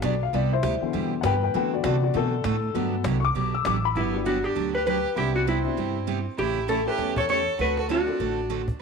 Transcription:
Already playing: upright piano F#3 A3 B3
0.02 upright bass B1, steel-string acoustic guitar D3 F#3 B3 D4 G4, upright piano D5, cajon slap
0.21 upright piano F5, cajon slap
0.33 upright bass C2, steel-string acoustic guitar C3 G3 B3 E4 G4, upright piano D5, cajon slap
0.53 upright piano E4 C5
0.63 upright bass D2, steel-string acoustic guitar C3 G3 B3 E4 G4, cajon slap
0.82 upright piano B2 D3 E3, muted upright bass stroke
0.93 upright bass E2, steel-string acoustic guitar C3 G3 B3 E4 G4, cajon slap
1.21 upright bass G2, steel-string acoustic guitar C3 G3 B3 E4 G4, upright piano B4 F#5, cajon slap
1.26 upright piano G5
1.42 upright piano B4 G5, cajon slap
1.54 upright piano D3 E3 F#3 B3 B4 G5, steel-string acoustic guitar D3 A3 C4 F#4 A4, upright bass D3, cajon slap
1.73 upright piano F#4 D5
1.84 upright bass C3, steel-string acoustic guitar D3 A3 C4 F#4 A4, upright piano F#4 D5, cajon slap
2.02 upright piano F#4 D5, cajon slap
2.14 upright bass B2, upright piano C3 E3 F#3 B3 A4, steel-string acoustic guitar D3 A3 C4 F#4 A4, cajon slap
2.44 upright bass A2, steel-string acoustic guitar D3 A3 C4 F#4 A4, cajon slap
2.62 cajon slap
2.74 upright bass G2, steel-string acoustic guitar D3 F#3 B3 D4 G4, upright piano F#3 A3 B3, cajon slap
3.04 upright bass C2, steel-string acoustic guitar D3 F#3 B3 D4 G4, cajon slap
3.20 upright piano C#6, cajon slap
3.25 upright piano D6
3.35 upright bass B1, steel-string acoustic guitar D3 F#3 B3 D4 G4, cajon slap
3.55 upright piano E6
3.65 upright bass A1, steel-string acoustic guitar D3 F#3 B3 D4 G4, upright piano D6, cajon slap
3.83 upright piano B5, cajon slap
3.95 upright bass G1, steel-string acoustic guitar D3 F#3 B3 D4 G4, fiddle B3, hollow-body jazz guitar E4, cajon slap
4.13 upright piano G3 B3 D4 F#4 G4
4.25 steel-string acoustic guitar D3 F#3 B3 D4 G4, fiddle D4, hollow-body jazz guitar F#4, cajon slap
4.44 fiddle D4, hollow-body jazz guitar G4, cajon slap
4.55 upright bass D2, steel-string acoustic guitar D3 F#3 B3 D4 G4, cajon slap
4.75 fiddle G4, hollow-body jazz guitar B4
4.86 steel-string acoustic guitar D3 F#3 B3 D4 G4, fiddle G4, hollow-body jazz guitar B4, cajon slap
5.04 cajon slap
5.16 upright bass C2, steel-string acoustic guitar C3 G3 B3 E4 G4, upright piano B3 C4 D4 E4 G4, fiddle E4, hollow-body jazz guitar G4, cajon slap
5.35 fiddle D4, hollow-body jazz guitar F#4
5.46 steel-string acoustic guitar C3 G3 B3 E4 G4, fiddle C4, hollow-body jazz guitar E4, cajon slap
5.64 upright piano B3 C4 D4 E4 F#4, cajon slap
5.77 upright bass G2, steel-string acoustic guitar C3 G3 B3 E4 G4
6.07 steel-string acoustic guitar C3 G3 B3 E4 G4, cajon slap
6.26 cajon slap
6.38 upright bass A1, steel-string acoustic guitar C#3 E3 A3 C#4 G4, fiddle E4, hollow-body jazz guitar G4, cajon slap
6.68 steel-string acoustic guitar C#3 E3 A3 C#4 G4, fiddle E4, hollow-body jazz guitar A4, cajon slap
6.86 upright piano A3 C#4 E4 G4 A4, fiddle G4, hollow-body jazz guitar B4, cajon slap
6.98 upright bass E2, steel-string acoustic guitar C#3 E3 A3 C#4 G4, cajon slap
7.16 fiddle A4, hollow-body jazz guitar C#5, cajon bass
7.29 steel-string acoustic guitar C#3 E3 A3 C#4 G4, fiddle A4, hollow-body jazz guitar C#5, cajon slap
7.47 cajon slap
7.59 upright bass D2, steel-string acoustic guitar D3 A3 C4 F#4 A4, fiddle F#4, hollow-body jazz guitar B4, cajon slap
7.77 fiddle F#4, hollow-body jazz guitar A4, cajon slap
7.89 steel-string acoustic guitar D3 A3 C4 F#4 A4, fiddle D4, hollow-body jazz guitar F#4, cajon slap
8.07 upright piano A3 C4 D4 F#4 A4, cajon slap
8.19 upright bass A1, steel-string acoustic guitar D3 A3 C4 F#4 A4, cajon slap
8.50 steel-string acoustic guitar D3 A3 C4 F#4 A4, cajon slap
8.68 cajon bass

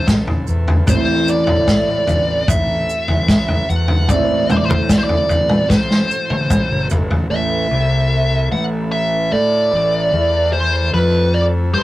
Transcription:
Already playing: fingered electric bass A1, clean electric guitar A2 E3 A3 C4 E4, transistor combo organ A3 C4 E4 A4
0.07 kick, snare, mid tom, maracas
0.27 floor tom
0.47 fingered electric bass E2, maracas
0.68 floor tom
0.87 fingered electric bass A1, clean electric guitar A2 E3 A3 C4 E4, transistor combo organ F#4, lead electric guitar C5, kick, floor tom, maracas
1.28 lead electric guitar D5, maracas
1.47 fingered electric bass A2, floor tom
1.67 kick, snare, maracas
2.07 fingered electric bass A1, floor tom, maracas
2.48 fingered electric bass A1, lead electric guitar E5, kick, floor tom, maracas
2.89 maracas
3.08 fingered electric bass A1, floor tom
3.28 kick, snare, maracas
3.48 floor tom
3.70 fingered electric bass E2, lead electric guitar F#5, maracas
3.88 floor tom
4.07 fingered electric bass A1, clean electric guitar A2 E3 A3 C4 E4, lead electric guitar D5, kick, floor tom, maracas
4.50 lead electric guitar C5, floor tom, mid tom, maracas
4.58 lead electric guitar D5
4.65 lead electric guitar C5
4.70 fingered electric bass A2, floor tom
4.89 lead electric guitar D5, kick, snare, maracas
4.98 lead electric guitar C5
5.04 lead electric guitar D5
5.09 floor tom
5.29 fingered electric bass A1, floor tom, maracas
5.49 mid tom
5.70 fingered electric bass A1, lead electric guitar C5, kick, snare, maracas
5.90 snare
6.11 maracas
6.30 fingered electric bass A1, high tom
6.50 kick, mid tom, maracas
6.70 fingered electric bass F#1
6.90 fingered electric bass G1, floor tom, maracas
7.11 fingered electric bass A1, floor tom
7.29 fingered electric bass A1, clean electric guitar A2, transistor combo organ A3 E4 A4, lead electric guitar E5
7.71 fingered electric bass C2, clean electric guitar C3
8.51 fingered electric bass A1, clean electric guitar A2, lead electric guitar F#5
8.92 lead electric guitar E5
9.32 fingered electric bass A2, clean electric guitar A3, lead electric guitar D5
9.72 fingered electric bass A1, clean electric guitar A2
10.12 fingered electric bass E2, clean electric guitar E3
10.53 lead electric guitar C5
10.93 fingered electric bass F2, clean electric guitar F3, lead electric guitar B4
11.34 lead electric guitar D5
11.73 fingered electric bass G2, clean electric guitar G3, lead electric guitar C5

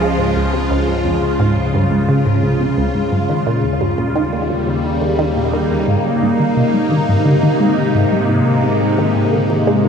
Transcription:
Already playing: synth drone C#2, ambient pad C#3 F3 G#3 F4
0.02 synth arpeggio sound C#3
0.19 synth arpeggio sound G#2
0.36 synth arpeggio sound C#2
0.53 synth arpeggio sound C3
0.71 synth arpeggio sound C#2
0.88 synth arpeggio sound G#2
1.05 synth arpeggio sound F2
1.22 synth arpeggio sound C#3
1.40 synth arpeggio sound G#2
1.57 synth arpeggio sound C#2
1.74 synth arpeggio sound G2
1.91 synth arpeggio sound G#2
2.09 synth arpeggio sound C#3
2.26 synth arpeggio sound G#2
2.43 synth arpeggio sound C#2
2.60 synth arpeggio sound C3
2.78 synth arpeggio sound C#2
2.95 synth arpeggio sound G#2
3.12 synth drone D#2, synth arpeggio sound G2
3.29 synth arpeggio sound D#3
3.47 synth arpeggio sound A#2, ambient pad G3
3.64 synth arpeggio sound D#2, ambient pad A#3
3.81 synth arpeggio sound G2
3.98 synth arpeggio sound A#2
4.15 synth arpeggio sound D#3
4.27 ambient pad D#4
4.33 synth arpeggio sound A#2
4.50 synth arpeggio sound D#2
4.67 synth arpeggio sound C#3
4.85 synth arpeggio sound D#3
5.02 synth arpeggio sound D#3
5.19 synth arpeggio sound D#3
5.36 synth arpeggio sound A#2
5.53 synth arpeggio sound D#3
5.71 synth arpeggio sound D#2
5.88 synth arpeggio sound G#2, synth drone G#2, ambient pad C3
6.05 synth arpeggio sound G3
6.11 ambient pad G#3
6.22 synth arpeggio sound G#2
6.40 synth arpeggio sound D#3
6.57 synth arpeggio sound C3
6.74 synth arpeggio sound G#3
6.91 synth arpeggio sound D#3
7.09 synth arpeggio sound G#2
7.26 synth arpeggio sound D3
7.43 synth arpeggio sound D#3
7.60 synth arpeggio sound G#3
7.78 synth arpeggio sound D#3
7.95 synth arpeggio sound G#2
8.12 synth arpeggio sound G3
8.29 synth arpeggio sound G#2
8.46 synth arpeggio sound D#3
8.64 synth arpeggio sound C3
8.81 synth arpeggio sound G#3
8.98 synth arpeggio sound D#3
9.16 synth arpeggio sound G#2
9.33 synth arpeggio sound D3
9.50 synth arpeggio sound D#3
9.67 synth arpeggio sound G#3
9.84 synth arpeggio sound D#3

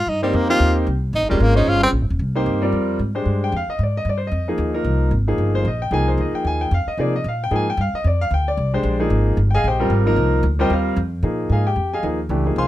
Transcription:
Already playing: tenor saxophone F4
0.06 upright bass G2, tenor saxophone D#4
0.22 tenor saxophone G3, grand piano A#3 C4 D#4 G4 C5
0.33 upright bass F2, tenor saxophone A#3
0.49 grand piano A#3 C4 D#4 G4 C5, tenor saxophone F4
0.60 upright bass D#2
0.87 upright bass C2
1.13 upright bass A#1, tenor saxophone D#4
1.22 upright bass G1
1.29 upright bass D#1, tenor saxophone G3, grand piano G#3 A#3 C#4 F4 A#4
1.40 upright bass G#1, tenor saxophone A#3
1.55 grand piano C#4 F4 G#4 C5 C#5, tenor saxophone D#4
1.67 upright bass G1, tenor saxophone F4
1.84 tenor saxophone C4
1.93 upright bass A#1
2.01 upright bass G1
2.10 upright bass D#1
2.19 upright bass C2
2.35 grand piano A#3 C4 D#4 G4 C5
2.46 upright bass G2
2.62 grand piano G3 C4 F4 A#4 D5
2.72 upright bass F2
2.99 upright bass G#2
3.15 grand piano G#3 D4 G4 C5
3.26 upright bass G2
3.44 grand piano G5
3.52 upright bass F2
3.56 grand piano F5
3.67 grand piano D#5, muted upright bass stroke
3.79 upright bass G#2
3.83 grand piano D5
3.97 grand piano D#5
4.05 upright bass G2
4.09 grand piano D5
4.18 grand piano C5
4.27 grand piano D#5
4.31 upright bass F2
4.48 grand piano F3 A#3 D#4 G#4
4.58 upright bass D#2
4.74 grand piano F3 A#3 D#4 A#4
4.84 upright bass C2
5.11 upright bass G#1
5.28 grand piano F3 A#3 D#4 G#4
5.38 upright bass G1
5.55 grand piano C5
5.65 upright bass A#1, grand piano D#5
5.82 grand piano G5
5.91 upright bass C2, grand piano F3 A#3 D#4 G#4 G#5
6.08 grand piano C5
6.18 upright bass D2, grand piano D#5
6.33 grand piano G5, muted upright bass stroke
6.45 upright bass D#2, grand piano G#5
6.61 grand piano G5
6.71 upright bass F2, grand piano F5
6.86 grand piano D#5, muted upright bass stroke
6.97 upright bass C3, grand piano F3 A#3 D#4 G#4 D5
7.16 grand piano D#5
7.24 upright bass A#2
7.28 grand piano F5
7.44 grand piano G5
7.51 upright bass G#2, grand piano F3 A#3 D#4 G#4
7.56 grand piano G#5
7.70 grand piano G5
7.77 upright bass G2, grand piano F5
7.93 grand piano D#5, muted upright bass stroke
8.04 upright bass F2, grand piano D5
8.21 grand piano F5
8.31 upright bass D2, grand piano G5
8.48 grand piano D5
8.57 upright bass C2
8.74 grand piano G#3 D4 G4 C5
8.83 upright bass A#1
9.00 grand piano F3 A#3 D#4 G#4
9.10 upright bass G#1
9.37 upright bass G1
9.51 grand piano G5 G#5
9.55 grand piano G#4 D#5 F5
9.64 upright bass A#1, grand piano G4 C5 D#5 G5
9.80 grand piano G3 C4 F4 A#4
9.90 upright bass G#1
10.06 grand piano F3 A#3 D#4 A#4
10.16 upright bass C2
10.43 upright bass D2
10.59 grand piano G3 C4 F4 G4 A#4 C5 D#5 G5
10.70 upright bass D#2, grand piano F4 A#4 C5 F5
10.96 upright bass F2
11.23 upright bass A#2, grand piano F3 A#3 D#4 G#4
11.49 upright bass G#2, grand piano G#4 D#5 F5 G#5
11.67 grand piano G4 G5
11.76 upright bass F2
11.94 grand piano G#4 D#5 F5 G#5
12.03 upright bass D#2, grand piano F3 A#3 D#4 G#4
12.29 upright bass C#2, grand piano E3 A3 D4 G4
12.46 grand piano F3 A#3 D#4 G#4
12.56 upright bass C2, grand piano C5 F5 G#5 C6

